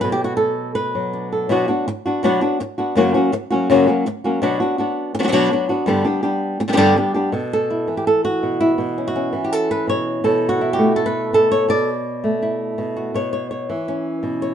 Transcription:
0.00 1.48 B2 medium
0.00 0.15 F#3 medium
0.00 1.50 A3 soft
0.00 0.12 B4 medium
0.12 0.24 G4 medium
0.24 0.36 F#4 medium
0.37 0.75 A4 medium
0.75 1.31 B4 medium
0.95 1.48 F#3 medium
1.13 1.48 D4 soft
1.32 1.48 A4 soft
1.49 1.67 B2 medium
1.49 1.68 F#3 medium
1.49 1.68 B3 medium
1.49 1.68 D4 medium
1.49 1.67 F#4 medium
1.68 1.86 B3 soft
1.68 1.86 D4 soft
1.68 1.86 F#4 soft
1.88 muted nylon-string guitar stroke medium
2.06 2.23 B3 soft
2.06 2.23 D4 soft
2.06 2.23 F#4 soft
2.23 2.41 B2 medium
2.23 2.41 F#3 medium
2.23 2.41 B3 medium
2.23 2.41 D4 medium
2.23 2.40 F#4 medium
2.41 2.59 B3 soft
2.41 2.59 D4 soft
2.41 2.59 F#4 medium
2.60 muted nylon-string guitar stroke medium
2.78 2.96 B3 soft
2.78 2.96 D4 soft
2.78 2.95 F#4 medium
2.95 3.13 F#2 medium
2.95 3.14 C#3 medium
2.95 3.14 F#3 medium
2.95 3.14 A#3 medium
2.95 3.14 C#4 medium
2.95 3.13 F#4 medium
3.14 3.32 F#3 soft
3.14 3.32 A#3 medium
3.14 3.32 C#4 medium
3.14 3.32 F#4 medium
3.32 muted nylon-string guitar stroke medium
3.50 3.69 F#3 soft
3.50 3.69 A#3 soft
3.50 3.69 C#4 medium
3.50 3.68 F#4 medium
3.70 3.87 F#2 medium
3.70 3.87 C#3 medium
3.70 3.87 F#3 medium
3.70 3.87 A#3 medium
3.70 3.87 C#4 medium
3.70 3.86 F#4 medium
3.87 4.06 F#3 soft
3.87 4.05 A#3 soft
3.87 4.05 C#4 medium
3.87 4.05 F#4 soft
4.06 muted nylon-string guitar stroke medium
4.24 4.41 F#3 soft
4.24 4.42 A#3 medium
4.24 4.42 C#4 medium
4.24 4.42 F#4 soft
4.42 4.59 B2 medium
4.42 4.60 F#3 medium
4.42 4.60 B3 medium
4.42 4.60 D4 medium
4.42 4.59 F#4 medium
4.60 4.79 B3 soft
4.60 4.78 D4 medium
4.60 4.77 F#4 medium
4.78 5.13 B3 soft
4.78 5.14 D4 soft
4.78 5.14 F#4 medium
5.14 muted nylon-string guitar stroke medium
5.19 5.22 F#3 medium
5.19 5.27 F#3 medium
5.19 5.23 B3 medium
5.19 5.23 D4 medium
5.19 5.23 F#4 medium
5.24 5.31 F#3 medium
5.24 5.27 B3 medium
5.24 5.28 D4 medium
5.24 5.28 F#4 medium
5.29 5.50 B2 medium
5.29 5.50 F#3 medium
5.29 5.32 B3 medium
5.29 5.32 D4 medium
5.29 5.33 F#4 medium
5.33 5.51 B3 medium
5.33 5.51 D4 medium
5.33 5.51 F#4 medium
5.51 5.69 F#3 medium
5.51 5.69 B3 medium
5.51 5.69 D4 medium
5.51 5.68 F#4 medium
5.69 5.86 B3 soft
5.69 5.87 D4 soft
5.69 5.87 F#4 medium
5.86 6.04 G2 medium
5.86 6.05 D3 medium
5.86 6.05 G3 medium
5.86 6.05 B3 medium
5.86 6.04 D4 medium
5.86 6.03 G4 medium
6.04 6.24 G3 soft
6.04 6.23 B3 soft
6.04 6.22 D4 medium
6.04 6.21 G4 medium
6.23 6.59 G3 soft
6.23 6.59 B3 soft
6.23 6.59 D4 soft
6.23 6.59 G4 medium
6.60 muted nylon-string guitar stroke medium
6.68 6.71 D3 soft
6.68 6.72 G3 soft
6.68 6.72 B3 soft
6.68 6.72 D4 soft
6.68 6.73 G4 medium
6.73 6.76 D3 medium
6.73 6.76 G3 medium
6.73 6.76 B3 medium
6.73 6.77 D4 medium
6.73 6.77 G4 medium
6.77 6.95 G2 medium
6.77 6.95 D3 medium
6.77 6.95 G3 medium
6.77 6.96 B3 medium
6.77 6.96 D4 medium
6.77 6.96 G4 medium
6.96 7.14 G3 soft
6.96 7.15 B3 medium
6.96 7.14 D4 medium
7.14 7.33 G3 soft
7.14 7.33 B3 soft
7.14 7.33 D4 soft
7.14 7.32 G4 soft
7.32 7.87 B2 medium
7.32 7.53 A4 soft
7.53 7.97 A4 medium
7.70 8.60 E4 soft
7.88 9.32 E3 medium
7.97 8.06 G4 medium
8.07 8.24 A4 medium
8.25 8.97 F#4 medium
8.43 8.77 B2 medium
8.61 9.42 E4 medium
8.78 9.33 B2 medium
8.98 9.14 C#4 soft
9.08 9.70 F#4 medium
9.16 10.22 C#4 soft
9.33 10.78 E3 medium
9.44 9.52 G4 medium
9.52 10.06 A4 medium
9.71 9.88 B4 medium
9.87 10.23 B2 medium
9.87 10.25 C#5 medium
10.24 11.32 B2 medium
10.24 10.73 A4 medium
10.49 11.05 F#4 medium
10.61 11.73 E4 soft
10.73 10.96 G4 medium
10.78 11.72 A3 medium
10.96 11.33 A4 medium
11.06 11.51 B4 medium
11.33 11.67 B2 medium
11.33 11.88 A4 loud
11.52 11.69 C#5 medium
11.69 12.77 B2 medium
11.69 12.79 D5 loud
12.24 13.17 A3 medium
12.42 13.88 E4 soft
12.78 13.13 B2 medium
12.97 13.13 F#4 soft
13.14 13.69 B2 medium
13.14 13.32 C#5 medium
13.33 13.50 C#5 medium
13.51 14.41 C#5 soft
13.70 14.54 E3 medium
13.88 14.54 C#4 medium
14.23 14.54 B2 medium
14.42 14.54 C#5 medium

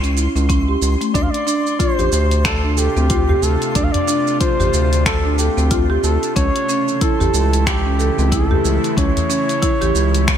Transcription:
0.00 0.28 C#2 loud
0.00 0.15 C#4 medium
0.00 10.38 C6 medium
0.00 closed hi-hat soft
0.04 shaker soft
0.17 0.34 E4 medium
0.17 shaker medium
0.36 0.76 C#2 loud
0.36 0.48 C#4 medium
0.36 shaker soft
0.49 0.68 C#4 loud
0.49 kick loud
0.49 closed hi-hat medium
0.49 shaker soft
0.68 0.81 G4 medium
0.82 0.96 C#2 medium
0.82 shaker medium
1.01 1.14 A3 medium
1.01 closed hi-hat soft
1.01 shaker soft
1.14 1.29 D2 loud
1.14 6.32 C3 medium
1.14 10.38 A3 medium
1.14 1.33 D4 loud
1.14 6.32 D4 medium
1.14 6.33 F4 medium
1.14 1.24 D5 loud
1.14 kick loud
1.14 closed hi-hat medium
1.14 shaker soft
1.22 1.32 F5 loud
1.31 1.81 D5 loud
1.31 closed hi-hat soft
1.47 1.58 D4 loud
1.47 shaker medium
1.67 shaker soft
1.79 1.97 F4 loud
1.79 2.47 C5 loud
1.79 kick loud
1.79 closed hi-hat medium
1.79 shaker soft
1.99 2.09 A1 medium
1.99 2.07 G4 loud
1.99 udu medium
1.99 shaker soft
2.12 2.89 D2 loud
2.12 shaker medium
2.31 closed hi-hat soft
2.31 shaker soft
2.45 2.72 A4 loud
2.45 finger snap medium
2.45 kick loud
2.45 closed hi-hat medium
2.45 shaker soft
2.64 2.76 D4 medium
2.72 2.80 A4 medium
2.77 3.45 G4 loud
2.77 2.89 A4 medium
2.77 shaker medium
2.97 3.37 D2 loud
2.97 3.10 C4 medium
2.97 shaker soft
3.10 3.27 F4 loud
3.10 kick loud
3.10 closed hi-hat medium
3.10 shaker soft
3.29 3.37 G4 loud
3.29 udu medium
3.43 3.57 D2 medium
3.43 3.78 A4 loud
3.43 shaker medium
3.62 closed hi-hat soft
3.62 shaker soft
3.75 3.90 D2 loud
3.75 3.94 D4 loud
3.75 3.85 D5 loud
3.75 kick medium
3.75 closed hi-hat medium
3.75 shaker soft
3.84 3.94 F5 loud
3.92 4.40 D5 loud
3.92 closed hi-hat soft
3.92 udu medium
4.08 4.19 D4 loud
4.08 shaker medium
4.27 shaker soft
4.41 4.58 F4 loud
4.41 5.02 C5 loud
4.41 kick medium
4.41 closed hi-hat medium
4.41 shaker soft
4.60 4.70 A1 medium
4.60 4.68 G4 loud
4.60 udu medium
4.60 shaker soft
4.73 5.50 D2 loud
4.73 shaker medium
4.93 closed hi-hat soft
4.93 shaker soft
5.06 5.36 A4 loud
5.06 finger snap medium
5.06 kick loud
5.06 closed hi-hat medium
5.06 shaker soft
5.25 5.37 D4 medium
5.38 5.75 G4 medium
5.38 5.49 A4 medium
5.38 shaker medium
5.57 5.98 D2 loud
5.57 5.70 C4 medium
5.57 shaker soft
5.71 5.88 F4 loud
5.71 kick loud
5.71 closed hi-hat medium
5.71 shaker soft
5.90 5.98 G4 loud
6.04 6.18 D2 medium
6.04 6.34 A4 medium
6.04 shaker medium
6.23 closed hi-hat soft
6.23 shaker soft
6.36 6.51 C#2 loud
6.36 10.38 C#3 medium
6.36 10.38 E3 medium
6.36 6.54 C#4 loud
6.36 10.38 E4 medium
6.36 7.04 C#5 loud
6.36 kick loud
6.36 closed hi-hat medium
6.36 shaker soft
6.56 closed hi-hat soft
6.69 6.80 C#4 medium
6.69 shaker medium
6.88 shaker soft
7.01 7.19 E4 loud
7.01 7.69 A4 loud
7.01 kick loud
7.01 closed hi-hat medium
7.01 shaker soft
7.20 7.31 A1 medium
7.20 7.28 G4 loud
7.20 udu medium
7.20 shaker soft
7.34 8.10 C#2 loud
7.34 shaker medium
7.53 closed hi-hat soft
7.53 shaker soft
7.67 8.34 G4 loud
7.67 finger snap medium
7.67 kick loud
7.67 closed hi-hat medium
7.67 shaker soft
7.86 7.98 C#4 medium
7.99 8.10 A4 medium
7.99 shaker medium
8.18 8.59 C#2 loud
8.18 8.31 C4 medium
8.18 shaker soft
8.32 8.49 E4 loud
8.32 8.97 A4 medium
8.32 kick loud
8.32 closed hi-hat medium
8.32 shaker soft
8.51 8.59 G4 loud
8.51 udu medium
8.65 8.79 C#2 medium
8.65 shaker medium
8.84 closed hi-hat soft
8.84 shaker soft
8.97 9.11 C#2 loud
8.97 9.15 C#4 loud
8.97 10.38 C#5 loud
8.97 kick loud
8.97 closed hi-hat medium
8.97 shaker soft
9.17 closed hi-hat soft
9.17 udu medium
9.17 shaker soft
9.30 9.41 C#4 loud
9.30 shaker medium
9.49 closed hi-hat soft
9.49 shaker soft
9.62 9.79 E4 loud
9.62 kick loud
9.62 closed hi-hat medium
9.62 shaker soft
9.81 9.92 A1 medium
9.81 9.89 G4 loud
9.81 closed hi-hat soft
9.81 udu loud
9.81 shaker soft
9.95 10.38 C#2 medium
9.95 shaker medium
10.14 closed hi-hat soft
10.14 shaker soft
10.28 finger snap medium
10.28 kick loud
10.28 closed hi-hat medium
10.28 shaker soft

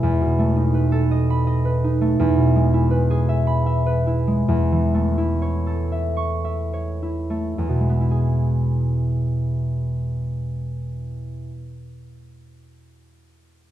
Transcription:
0.00 2.18 E2 medium
0.00 0.73 B4 soft
0.00 1.29 B5 medium
0.21 2.22 B2 soft
0.39 2.00 A3 soft
0.56 1.83 D#4 soft
0.74 1.64 B4 soft
0.92 2.21 A4 medium
1.11 1.46 D#5 soft
1.30 3.46 B5 medium
1.47 2.22 D#5 soft
1.65 2.90 B4 soft
1.84 2.22 D#4 soft
2.01 2.22 A3 soft
2.19 4.47 E2 medium
2.37 4.52 B2 soft
2.56 4.26 G#3 soft
2.74 4.06 E4 soft
2.91 3.85 B4 soft
3.10 4.52 G#4 medium
3.29 3.65 E5 medium
3.47 4.52 B5 medium
3.66 5.91 E5 soft
3.86 4.52 B4 medium
4.07 5.16 E4 soft
4.27 4.52 G#3 soft
4.48 7.57 E2 medium
4.72 7.63 E3 soft
4.94 7.29 A3 soft
5.18 7.01 E4 soft
5.42 6.72 C#5 soft
5.67 7.63 A4 soft
5.92 6.43 E5 soft
6.17 7.62 C#6 medium
6.44 10.34 E5 soft
6.73 7.63 C#5 soft
7.02 7.99 E4 soft
7.30 7.61 A3 soft
7.58 11.48 E2 soft
7.69 11.59 B2 soft
7.80 11.52 G#3 soft
7.89 11.62 B3 soft
8.01 11.73 E4 soft
8.11 11.84 G#4 soft

